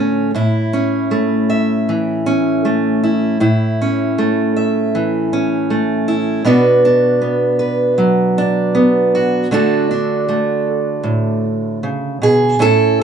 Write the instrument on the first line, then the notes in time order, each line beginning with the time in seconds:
steel-string acoustic guitar
Already playing: A2 D3 A3 C#4 F#4 A4
0.35 A2 E4
0.73 C#4
1.11 A3
1.50 E5
1.89 E3
2.26 C#4
2.65 A3
3.03 E4
3.40 A2 E4
3.82 C#4
4.18 A3
4.56 E5
4.95 E3
5.33 C#4
5.70 A3
6.08 E4
6.45 B2 B3 D4 F#4 B4
6.85 D4
7.22 B3
7.59 B4
7.98 F#3
8.38 D4
8.75 B3
9.15 F#4
9.51 D3 A3 D4 F#4 A4
9.91 D4
10.29 A3
11.03 A2
11.83 C#3
12.22 B2 G#4
12.59 A2 C#4 E4 A4